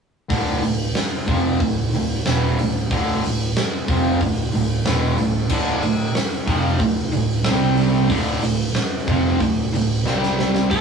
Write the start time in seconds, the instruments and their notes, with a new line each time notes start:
0.29 picked electric bass D1, distorted electric guitar D2 A2 D3, kick, open hi-hat
0.62 picked electric bass D1, distorted electric guitar D2 A2, open hi-hat
0.95 snare, open hi-hat
1.27 picked electric bass F1, distorted electric guitar F2 C3 F3, kick, open hi-hat
1.60 picked electric bass D1, distorted electric guitar D2 A2, kick, open hi-hat
1.93 picked electric bass D1, distorted electric guitar D2 A2, open hi-hat
2.25 picked electric bass E1, distorted electric guitar E2 B2 E3, snare, open hi-hat
2.58 picked electric bass D1, distorted electric guitar D2 A2, open hi-hat
2.90 picked electric bass D1, distorted electric guitar D2 A2 D3, kick, open hi-hat
3.23 picked electric bass D1, distorted electric guitar D2 A2, open hi-hat
3.56 snare, open hi-hat
3.88 picked electric bass F1, distorted electric guitar F2 C3 F3, kick, open hi-hat
4.21 picked electric bass D1, distorted electric guitar D2 A2, kick, open hi-hat
4.53 picked electric bass D1, distorted electric guitar D2 A2, open hi-hat
4.85 picked electric bass E1, distorted electric guitar E2 B2 E3, snare, open hi-hat
5.17 picked electric bass D1, distorted electric guitar D2 A2, open hi-hat
5.50 picked electric bass D1, distorted electric guitar D2 A2 D3, kick, crash
5.82 picked electric bass D1, distorted electric guitar D2 A2, open hi-hat
6.15 snare, open hi-hat
6.47 picked electric bass F1, distorted electric guitar F2 C3 F3, kick, open hi-hat
6.79 picked electric bass D1, distorted electric guitar D2 A2, kick, open hi-hat
7.12 picked electric bass D1, distorted electric guitar D2 A2, open hi-hat
7.44 picked electric bass C2, distorted electric guitar C3 G3 C4, snare, open hi-hat
7.77 open hi-hat
8.09 picked electric bass D1, distorted electric guitar D2 A2 D3, kick, open hi-hat
8.42 picked electric bass D1, distorted electric guitar D2 A2, open hi-hat
8.74 snare, open hi-hat
9.06 picked electric bass F1, distorted electric guitar F2 C3 F3, kick, open hi-hat
9.40 picked electric bass D1, distorted electric guitar D2 A2, kick, open hi-hat
9.73 picked electric bass D1, distorted electric guitar D2 A2, open hi-hat
10.04 picked electric bass C2, distorted electric guitar C3 G3 C4, snare
10.23 snare
10.39 snare
10.55 snare
10.70 picked electric bass D1, distorted electric guitar D2 A2 D3, lead electric guitar A4, kick, crash